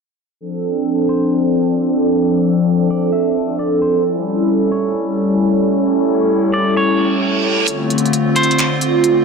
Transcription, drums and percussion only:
7.68 closed hi-hat medium
7.90 closed hi-hat medium
7.98 closed hi-hat soft
8.06 closed hi-hat soft
8.13 closed hi-hat medium
8.36 closed hi-hat medium
8.43 closed hi-hat medium
8.51 closed hi-hat medium
8.58 finger snap loud
8.58 closed hi-hat medium
8.81 closed hi-hat medium
9.04 closed hi-hat medium

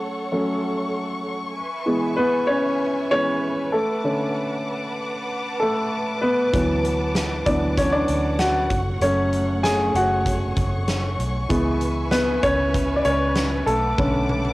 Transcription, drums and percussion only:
6.54 kick medium
6.54 closed hi-hat medium
6.85 closed hi-hat medium
7.15 snare loud
7.15 closed hi-hat medium
7.46 kick medium
7.46 closed hi-hat medium
7.77 kick medium
7.77 closed hi-hat medium
8.08 closed hi-hat medium
8.39 snare loud
8.39 closed hi-hat medium
8.70 kick medium
8.70 closed hi-hat medium
9.01 closed hi-hat medium
9.33 closed hi-hat medium
9.64 snare medium
9.64 closed hi-hat medium
9.95 closed hi-hat medium
10.26 kick medium
10.26 closed hi-hat medium
10.56 kick medium
10.56 closed hi-hat medium
10.88 snare medium
10.88 closed hi-hat medium
11.20 closed hi-hat medium
11.50 kick medium
11.50 closed hi-hat medium
11.81 closed hi-hat medium
12.11 snare loud
12.11 closed hi-hat medium
12.43 kick medium
12.43 closed hi-hat medium
12.74 kick medium
12.74 closed hi-hat medium
13.05 closed hi-hat medium
13.35 snare medium
13.35 closed hi-hat medium
13.67 closed hi-hat medium
13.98 kick medium
13.98 high tom soft
14.29 high tom medium
14.45 high tom soft

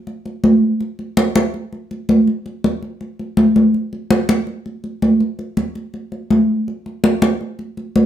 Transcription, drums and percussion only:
0.07 high conga soft
0.26 high conga soft
0.44 high conga medium
0.81 high conga soft
0.99 high conga soft
1.17 high conga medium
1.36 high conga medium
1.54 high conga soft
1.73 high conga soft
1.91 high conga soft
2.09 high conga medium
2.28 high conga soft
2.46 high conga soft
2.64 high conga medium
2.83 high conga soft
3.01 high conga soft
3.19 high conga soft
3.37 high conga medium
3.56 high conga medium
3.74 high conga soft
3.93 high conga soft
4.10 high conga loud
4.29 high conga medium
4.47 high conga soft
4.66 high conga soft
4.84 high conga soft
5.02 high conga medium
5.20 high conga soft
5.39 high conga soft
5.57 high conga medium
5.75 high conga soft
5.94 high conga soft
6.12 high conga soft
6.30 high conga medium
6.68 high conga soft
6.86 high conga soft
7.04 high conga loud
7.22 high conga medium
7.41 high conga soft
7.59 high conga soft
7.77 high conga soft
7.96 high conga medium

